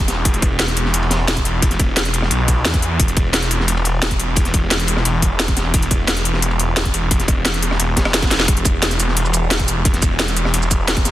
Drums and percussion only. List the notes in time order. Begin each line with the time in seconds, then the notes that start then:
0.08 snare, closed hi-hat, ride
0.25 kick, closed hi-hat, ride
0.34 closed hi-hat, ride
0.42 kick, closed hi-hat, ride
0.60 snare, closed hi-hat, ride
0.67 snare, closed hi-hat
0.77 closed hi-hat, ride
0.85 snare
0.94 closed hi-hat, ride
1.03 ride
1.11 snare, closed hi-hat, ride
1.28 snare, closed hi-hat, ride
1.37 kick, closed hi-hat
1.45 closed hi-hat, ride
1.62 kick, closed hi-hat, ride
1.71 snare, closed hi-hat
1.79 kick, closed hi-hat, ride
1.96 snare, closed hi-hat, ride
2.05 closed hi-hat
2.14 closed hi-hat, ride
2.22 cross-stick, snare
2.31 closed hi-hat, ride
2.48 kick, closed hi-hat, ride
2.65 snare, closed hi-hat, ride
2.74 kick, snare, closed hi-hat
2.82 closed hi-hat, ride
3.00 kick, closed hi-hat, ride
3.08 closed hi-hat, ride
3.17 kick, closed hi-hat, ride
3.33 snare, closed hi-hat, ride
3.42 snare, closed hi-hat
3.51 closed hi-hat, ride
3.60 snare
3.68 closed hi-hat, ride
3.77 ride
3.85 closed hi-hat, ride
4.02 snare, closed hi-hat, ride
4.11 kick, closed hi-hat
4.20 closed hi-hat, ride
4.36 kick, closed hi-hat, ride
4.45 snare, closed hi-hat
4.54 kick, closed hi-hat, ride
4.71 snare, closed hi-hat, ride
4.80 closed hi-hat
4.87 closed hi-hat, ride
4.97 cross-stick, snare
5.05 closed hi-hat, ride
5.22 kick, closed hi-hat, ride
5.39 snare, closed hi-hat, ride
5.48 kick, snare, closed hi-hat
5.57 snare, closed hi-hat, ride
5.74 kick, closed hi-hat, ride
5.82 closed hi-hat, ride
5.91 kick, closed hi-hat, ride
6.07 snare, closed hi-hat, ride
6.17 snare, closed hi-hat
6.25 closed hi-hat, ride
6.33 snare
6.42 closed hi-hat, ride
6.51 ride
6.59 closed hi-hat, ride
6.76 snare, closed hi-hat, ride
6.85 kick, closed hi-hat
6.94 closed hi-hat, ride
7.11 kick, closed hi-hat, ride
7.19 snare, closed hi-hat
7.28 kick, cross-stick, closed hi-hat, ride
7.45 snare, closed hi-hat, ride
7.54 closed hi-hat
7.62 closed hi-hat, ride
7.71 cross-stick, snare
7.80 closed hi-hat, ride
7.97 kick, snare, closed hi-hat, ride
8.05 cross-stick, snare, ride
8.13 snare, closed hi-hat, ride
8.22 kick, snare, closed hi-hat, ride
8.27 snare, ride
8.31 snare, closed hi-hat, ride
8.40 snare
8.48 kick, closed hi-hat, ride
8.57 closed hi-hat, ride
8.64 kick, closed hi-hat, ride, shaker
8.82 snare, closed hi-hat, ride
8.91 snare, closed hi-hat, shaker
9.00 closed hi-hat, ride, shaker
9.08 snare
9.16 closed hi-hat, ride
9.25 ride, shaker
9.33 closed hi-hat, ride, shaker
9.51 snare, closed hi-hat, ride
9.59 kick, closed hi-hat
9.68 closed hi-hat, ride, shaker
9.85 kick, closed hi-hat, ride
9.94 snare, closed hi-hat
10.02 kick, closed hi-hat, ride, shaker
10.19 snare, closed hi-hat, ride
10.28 closed hi-hat, shaker
10.36 closed hi-hat, ride, shaker
10.45 cross-stick, snare
10.54 closed hi-hat, ride
10.62 shaker
10.71 kick, closed hi-hat, ride, shaker
10.88 snare, closed hi-hat, ride
10.97 kick, snare, closed hi-hat
11.05 snare, closed hi-hat, ride, shaker